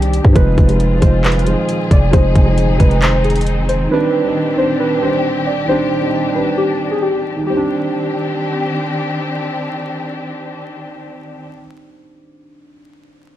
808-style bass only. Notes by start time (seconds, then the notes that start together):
Already playing: C2
0.24 G2
0.36 F1
0.58 F1
1.02 F1
1.91 F1
2.13 F1
2.36 F1
2.80 F1